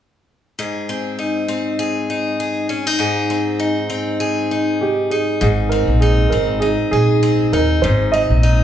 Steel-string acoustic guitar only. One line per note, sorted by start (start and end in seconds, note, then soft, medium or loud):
0.59 2.98 G#2 medium
0.59 1.79 G#4 soft
0.89 1.48 C4 soft
1.19 2.09 D#4 soft
1.48 3.30 C4 soft
1.79 2.39 G#4 medium
2.10 2.69 D#4 soft
2.40 2.99 G#4 medium
2.69 2.87 C#4 soft
2.87 3.58 D#4 soft
2.99 5.40 G#2 medium
2.99 4.20 G#4 soft
3.30 3.89 C4 soft
3.59 4.51 D#4 medium
3.90 5.71 C4 soft
4.20 6.92 G#4 medium
4.51 5.11 D#4 medium
5.11 6.02 D#4 soft
5.41 7.83 G#2 medium
5.72 6.31 C4 soft
6.02 6.62 D#4 medium
6.32 7.21 C4 medium
6.62 7.53 D#4 medium
6.93 8.64 G#4 medium
7.23 8.12 C4 soft
7.53 8.43 D#4 medium
7.84 8.64 G#2 medium
8.14 8.64 C4 soft
8.43 8.64 D#4 medium